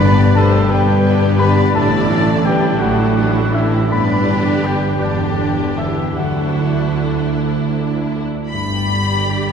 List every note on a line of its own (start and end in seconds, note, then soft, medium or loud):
0.00 0.59 G1 medium
0.00 0.59 G2 medium
0.00 1.77 G2 medium
0.00 1.78 G2 medium
0.00 1.78 B2 medium
0.00 0.35 B3 medium
0.00 0.16 B3 medium
0.00 0.19 D4 medium
0.00 0.38 B4 medium
0.00 0.19 B4 medium
0.00 0.37 D5 medium
0.00 0.33 B5 medium
0.00 0.38 B5 medium
0.00 1.78 B5 medium
0.04 1.06 D4 medium
0.04 0.34 D4 soft
0.04 0.35 G4 soft
0.04 0.35 D5 medium
0.17 0.35 G3 medium
0.17 0.32 B3 medium
0.17 0.36 G4 medium
0.17 0.53 D5 medium
0.33 0.71 A3 medium
0.33 0.49 B3 medium
0.33 0.51 D4 medium
0.33 0.72 A4 medium
0.33 0.52 B4 medium
0.33 0.68 A5 medium
0.33 0.70 A5 medium
0.37 0.68 D4 soft
0.37 1.78 G4 medium
0.37 0.69 G4 soft
0.37 0.71 C5 medium
0.37 0.68 D5 medium
0.50 0.69 G3 medium
0.50 0.66 B3 medium
0.50 0.69 G4 medium
0.55 0.88 D5 medium
0.68 1.63 G1 medium
0.68 1.63 G2 medium
0.68 1.39 G3 medium
0.68 0.85 B3 medium
0.68 0.86 D4 medium
0.68 1.40 G4 medium
0.68 0.87 B4 medium
0.68 1.39 B4 medium
0.68 1.35 G5 medium
0.68 1.39 G5 medium
0.73 1.03 D4 soft
0.73 1.03 G4 soft
0.73 1.04 D5 medium
0.85 1.04 G3 medium
0.85 1.01 B3 medium
0.85 1.04 G4 medium
0.90 2.26 D5 medium
1.02 1.19 B3 medium
1.02 1.20 D4 medium
1.02 1.20 B4 medium
1.07 1.37 D4 soft
1.07 1.92 D4 medium
1.07 1.38 G4 soft
1.07 1.38 D5 medium
1.20 1.39 G3 medium
1.20 1.38 B3 medium
1.20 1.39 G4 medium
1.25 1.58 B3 medium
1.37 1.55 B3 medium
1.37 1.57 D4 medium
1.37 1.56 B4 medium
1.37 1.77 B4 medium
1.37 1.75 D5 medium
1.37 1.72 B5 medium
1.41 1.79 D3 medium
1.41 1.76 B3 medium
1.41 1.72 D4 soft
1.41 1.72 G4 medium
1.41 1.72 D5 medium
1.41 1.74 B5 medium
1.55 1.74 G3 medium
1.55 1.74 B3 medium
1.55 1.74 G4 medium
1.59 1.78 B3 soft
1.73 2.68 A1 medium
1.73 2.68 A2 medium
1.73 2.09 A2 medium
1.73 3.95 A2 medium
1.73 1.90 E3 medium
1.73 2.44 A3 medium
1.73 1.90 D4 medium
1.73 1.91 D4 medium
1.73 2.43 A4 medium
1.73 2.44 D5 medium
1.73 2.46 A5 medium
1.73 2.40 A5 medium
1.89 2.09 D3 medium
1.89 2.08 E4 medium
1.89 2.09 E4 medium
1.93 2.43 D4 medium
2.08 2.27 E3 medium
2.08 3.35 E3 medium
2.08 2.26 D4 medium
2.08 2.41 D4 soft
2.08 2.41 E4 soft
2.08 2.41 D5 medium
2.25 2.44 D3 medium
2.25 2.43 E4 medium
2.25 2.44 E4 soft
2.25 2.61 D5 soft
2.42 2.61 E3 medium
2.42 2.80 G3 medium
2.42 2.59 D4 medium
2.42 2.61 D4 medium
2.42 3.16 D4 medium
2.42 2.77 D4 soft
2.42 2.77 E4 soft
2.42 2.81 G4 medium
2.42 2.81 G5 medium
2.42 2.78 G5 medium
2.46 2.81 B4 medium
2.46 2.77 D5 medium
2.61 2.80 D3 medium
2.61 2.79 E4 soft
2.61 2.80 E4 medium
2.61 2.97 D5 medium
2.79 3.79 A1 medium
2.79 3.79 A2 medium
2.79 2.98 E3 medium
2.79 3.54 F#3 medium
2.79 2.98 D4 medium
2.79 3.13 D4 soft
2.79 3.13 E4 soft
2.79 3.55 F#4 medium
2.79 3.54 A4 medium
2.79 3.13 D5 medium
2.79 3.56 F#5 medium
2.79 3.50 F#5 medium
2.79 5.01 D6 medium
2.96 3.17 D3 medium
2.96 3.15 E4 medium
2.96 3.16 E4 medium
2.96 4.45 D5 medium
3.16 3.34 E3 medium
3.16 3.34 D4 medium
3.16 3.50 D4 soft
3.16 3.53 D4 medium
3.16 3.50 E4 soft
3.16 3.51 D5 soft
3.34 3.54 D3 medium
3.34 3.73 E3 medium
3.34 3.53 E4 medium
3.34 3.54 E4 medium
3.52 3.72 E3 medium
3.52 3.91 E3 medium
3.52 3.72 D4 medium
3.52 3.72 D4 soft
3.52 3.88 D4 soft
3.52 4.10 D4 medium
3.52 3.92 E4 medium
3.52 3.88 E4 soft
3.52 3.92 G4 medium
3.52 3.88 D5 soft
3.52 3.89 E5 medium
3.52 3.91 E5 medium
3.71 3.90 D3 soft
3.71 3.95 E3 soft
3.71 3.91 E4 medium
3.90 4.97 G1 medium
3.90 4.97 G2 medium
3.90 6.21 G2 medium
3.90 4.28 G2 medium
3.90 4.97 D3 medium
3.90 4.63 B3 medium
3.90 4.97 D4 medium
3.90 4.96 G4 medium
3.90 4.66 B4 medium
3.90 4.63 D5 medium
3.90 4.68 B5 medium
3.90 4.61 B5 medium
4.11 4.64 D4 soft
4.29 5.58 D3 soft
4.29 4.61 D4 soft
4.29 4.61 G4 soft
4.29 4.62 D5 soft
4.47 4.82 D5 soft
4.64 5.02 G3 medium
4.64 5.38 D4 soft
4.64 4.98 D4 soft
4.64 5.02 G4 medium
4.64 4.99 G4 soft
4.64 5.02 B4 medium
4.64 4.98 D5 soft
4.64 4.99 G5 medium
4.64 5.05 G5 medium
4.83 5.19 D5 soft
5.00 6.18 E1 medium
5.00 6.18 E2 medium
5.00 6.15 D3 medium
5.00 5.78 D3 medium
5.00 5.80 D4 medium
5.00 6.16 D4 medium
5.00 5.36 D4 soft
5.00 6.15 G4 medium
5.00 5.77 G4 medium
5.00 5.36 G4 soft
5.00 5.40 D5 medium
5.00 5.80 D5 medium
5.00 7.37 D6 medium
5.20 6.78 D5 soft
5.39 5.77 D4 soft
5.39 5.75 D4 soft
5.39 5.75 G4 soft
5.39 5.75 D5 soft
5.59 5.97 D3 soft
5.78 6.18 E3 medium
5.78 6.38 D4 soft
5.78 6.15 D4 soft
5.78 6.18 E4 medium
5.78 6.17 G4 medium
5.78 6.15 G4 soft
5.78 6.15 D5 soft
5.78 6.15 E5 medium
5.78 6.18 E5 medium
5.99 6.17 D3 soft
6.17 8.27 D2 medium
6.17 6.58 D2 soft
6.17 8.27 D3 medium
6.17 8.55 D3 medium
6.17 7.34 F#3 medium
6.17 8.27 D4 medium
6.17 8.27 E4 medium
6.17 7.34 F#4 medium
6.17 7.37 A4 medium
6.17 7.32 F#5 medium
6.17 7.34 F#5 medium
6.39 8.15 D4 soft
6.59 6.99 E4 soft
6.59 6.95 E4 soft
6.59 6.95 A4 soft
6.59 6.95 D5 soft
6.80 7.75 D5 soft
6.99 7.33 E4 soft
6.99 7.95 E4 soft
6.99 7.34 A4 soft
6.99 7.34 D5 soft
7.20 7.56 E5 soft
7.38 7.73 E4 soft
7.38 7.72 A4 soft
7.38 7.73 D5 soft
7.38 9.52 D6 soft
7.57 8.55 E5 soft
7.76 8.12 E4 soft
7.76 8.12 A4 soft
7.76 9.52 D5 soft
7.76 8.12 D5 soft
7.96 8.55 E4 soft
8.16 9.52 D4 soft
8.16 8.49 E4 soft
8.16 8.49 A4 soft
8.16 8.49 D5 soft
8.35 8.55 A3 soft
8.50 9.52 G1 medium
8.50 9.52 G2 soft
8.50 9.52 G2 medium
8.50 9.52 G2 soft
8.50 9.52 G3 medium
8.50 9.52 G4 medium
8.50 9.52 D5 medium
8.50 9.52 B5 medium
8.89 9.46 D3 soft
8.89 9.52 B3 soft
9.24 9.52 G4 soft
9.24 9.52 D5 soft